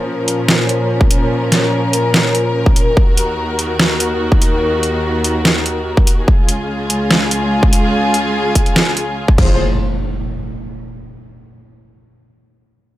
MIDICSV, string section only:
0, 0, Header, 1, 2, 480
1, 0, Start_track
1, 0, Tempo, 413793
1, 1523, Time_signature, 4, 2, 24, 8
1, 15052, End_track
2, 0, Start_track
2, 0, Title_t, "String section"
2, 0, Program_c, 0, 48
2, 0, Note_on_c, 0, 46, 83
2, 0, Note_on_c, 0, 53, 71
2, 0, Note_on_c, 0, 61, 76
2, 0, Note_on_c, 0, 70, 87
2, 3397, Note_off_c, 0, 53, 0
2, 3405, Note_off_c, 0, 46, 0
2, 3405, Note_off_c, 0, 61, 0
2, 3441, Note_on_c, 0, 51, 73
2, 3442, Note_on_c, 0, 39, 82
2, 3442, Note_on_c, 0, 66, 73
2, 7237, Note_off_c, 0, 70, 0
2, 7244, Note_off_c, 0, 39, 0
2, 7244, Note_off_c, 0, 51, 0
2, 7244, Note_off_c, 0, 66, 0
2, 7280, Note_on_c, 0, 68, 94
2, 7281, Note_on_c, 0, 37, 85
2, 7281, Note_on_c, 0, 49, 73
2, 7281, Note_on_c, 0, 65, 77
2, 10846, Note_off_c, 0, 37, 0
2, 10846, Note_off_c, 0, 49, 0
2, 10846, Note_off_c, 0, 65, 0
2, 10846, Note_off_c, 0, 68, 0
2, 10883, Note_on_c, 0, 53, 72
2, 10883, Note_on_c, 0, 65, 66
2, 10883, Note_on_c, 0, 72, 83
2, 10884, Note_on_c, 0, 68, 70
2, 11106, Note_off_c, 0, 53, 0
2, 11106, Note_off_c, 0, 65, 0
2, 11106, Note_off_c, 0, 72, 0
2, 11107, Note_off_c, 0, 68, 0
2, 15052, End_track
0, 0, End_of_file